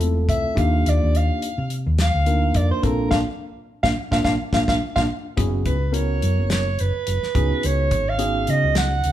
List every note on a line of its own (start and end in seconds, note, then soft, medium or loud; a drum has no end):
0.00 0.27 E1 medium
0.00 0.56 A3 medium
0.00 0.56 C4 medium
0.00 0.56 E4 medium
0.00 0.54 F4 medium
0.00 0.56 A4 medium
0.00 closed hi-hat medium
0.29 0.44 C2 medium
0.29 0.61 E5 medium
0.29 kick medium
0.29 closed hi-hat medium
0.55 0.84 D#2 medium
0.55 1.47 A#3 medium
0.55 1.47 D4 medium
0.55 1.48 D#4 medium
0.55 1.48 F4 medium
0.55 1.48 G4 medium
0.55 kick medium
0.55 closed hi-hat medium
0.59 0.91 F5 medium
0.86 1.01 D#2 medium
0.86 1.18 D5 medium
0.86 closed hi-hat medium
1.04 1.29 D#2 medium
1.15 1.72 F5 medium
1.15 closed hi-hat medium
1.42 closed hi-hat medium
1.58 1.85 C3 medium
1.70 closed hi-hat medium
1.86 2.13 D#2 medium
1.98 2.58 F5 loud
1.98 snare medium
1.98 closed hi-hat medium
2.14 2.53 D2 medium
2.26 2.82 A#3 medium
2.26 2.82 D4 medium
2.26 2.83 D#4 medium
2.26 2.82 F4 medium
2.26 2.83 A#4 medium
2.26 closed hi-hat medium
2.54 2.70 F2 medium
2.54 2.71 D5 medium
2.54 kick medium
2.54 closed hi-hat medium
2.71 2.85 C5 medium
2.83 3.11 A#1 medium
2.83 3.09 A#3 medium
2.83 3.12 C4 medium
2.83 3.10 D4 medium
2.83 3.10 F4 medium
2.83 3.12 A4 medium
2.83 3.10 A#4 medium
2.83 kick medium
2.83 closed hi-hat medium
3.11 3.23 A#1 medium
3.11 3.21 A#3 medium
3.11 3.21 D4 medium
3.11 3.21 F4 medium
3.11 3.18 F5 medium
3.11 kick medium
3.11 snare medium
3.83 3.93 A#1 medium
3.83 3.92 A#3 medium
3.83 3.92 D4 medium
3.83 3.92 F4 medium
3.83 3.89 F5 medium
3.83 kick medium
3.83 snare medium
4.11 4.22 A#1 medium
4.11 4.20 A#3 medium
4.11 4.20 D4 medium
4.11 4.20 F4 medium
4.11 4.19 F5 medium
4.11 kick medium
4.11 snare medium
4.24 4.36 A#1 medium
4.24 4.35 A#3 medium
4.24 4.34 D4 medium
4.24 4.35 F4 medium
4.24 4.32 F5 medium
4.24 kick medium
4.24 snare medium
4.53 4.64 A#1 medium
4.53 4.63 A#3 medium
4.53 4.63 D4 medium
4.53 4.63 F4 medium
4.53 4.61 F5 medium
4.53 kick medium
4.53 snare medium
4.68 4.78 A#1 medium
4.68 4.77 A#3 medium
4.68 4.76 D4 medium
4.68 4.77 F4 medium
4.68 4.75 F5 medium
4.68 kick medium
4.68 snare medium
4.96 5.06 A#1 medium
4.96 5.05 A#3 medium
4.96 5.05 D4 medium
4.96 5.05 F4 medium
4.96 5.02 F5 medium
4.96 kick medium
4.96 snare medium
5.37 5.65 F#1 medium
5.37 5.76 B3 medium
5.37 5.75 C#4 medium
5.37 5.76 E4 medium
5.37 5.76 F#4 medium
5.37 5.76 G#4 medium
5.37 kick loud
5.37 closed hi-hat medium
5.66 6.20 C#2 medium
5.66 5.96 B4 medium
5.66 kick medium
5.66 closed hi-hat medium
5.92 6.68 B3 medium
5.92 6.69 C#4 medium
5.92 6.69 E4 medium
5.92 6.69 F#4 medium
5.92 6.69 A#4 medium
5.92 6.51 C#5 medium
5.92 closed hi-hat medium
6.22 6.38 F#2 medium
6.22 closed hi-hat medium
6.39 6.78 F#1 medium
6.50 6.82 C#5 medium
6.50 snare loud
6.50 closed hi-hat medium
6.79 6.95 F#1 medium
6.79 7.68 B4 medium
6.79 closed hi-hat medium
6.96 muted fingered electric bass stroke soft
7.07 7.22 F#1 medium
7.07 closed hi-hat medium
7.23 muted fingered electric bass stroke soft
7.23 snare soft
7.35 7.50 C#2 medium
7.35 8.04 B3 medium
7.35 8.04 C#4 medium
7.35 8.04 D#4 medium
7.35 8.04 F#4 medium
7.35 8.04 G#4 medium
7.35 kick medium
7.35 closed hi-hat medium
7.63 7.91 C#2 medium
7.63 8.11 C#5 medium
7.63 closed hi-hat medium
7.91 8.45 G#1 medium
7.91 kick medium
7.91 closed hi-hat medium
8.09 8.52 F5 medium
8.18 8.94 B3 medium
8.18 8.94 C#4 medium
8.18 8.94 D#4 medium
8.18 8.95 F#4 medium
8.18 8.94 G#4 medium
8.18 closed hi-hat medium
8.47 8.63 C#3 medium
8.47 8.77 D#5 medium
8.47 closed hi-hat medium
8.64 9.02 C#2 medium
8.75 9.12 F#5 loud
8.75 snare loud
8.75 closed hi-hat medium
9.04 9.12 C#2 medium
9.04 closed hi-hat medium